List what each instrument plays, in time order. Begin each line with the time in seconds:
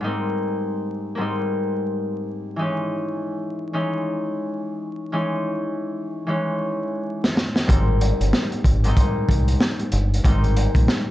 0.01 harp G#2 G3 D#4
0.05 harp A#3 C4
1.15 harp G#2 G3 A#3 C4
1.21 harp D#4
2.56 harp E3 G#3 D#4
2.61 harp C#4
3.73 harp E3 G#3 C#4 D#4
5.12 harp E3 G#3 C#4 D#4
6.27 harp E3 G#3 C#4 D#4
7.24 snare
7.37 snare
7.56 snare
7.66 fingered electric bass G#1, harp G#2 G3 A#3 C4 D#4, kick, closed hi-hat
8.01 closed hi-hat
8.20 fingered electric bass G1, closed hi-hat
8.33 snare
8.52 closed hi-hat
8.64 fingered electric bass G#1, kick, closed hi-hat
8.84 harp G#2 G3 A#3 C4, closed hi-hat
8.88 harp D#4
8.97 kick, closed hi-hat
9.29 fingered electric bass C2, kick, closed hi-hat
9.48 closed hi-hat
9.61 snare
9.79 closed hi-hat
9.92 fingered electric bass G1, closed hi-hat
10.14 closed hi-hat
10.23 fingered electric bass G#1, harp G#2 G3 A#3 C4 D#4, kick, closed hi-hat
10.44 closed hi-hat
10.56 closed hi-hat
10.75 fingered electric bass A#1, kick, closed hi-hat
10.88 snare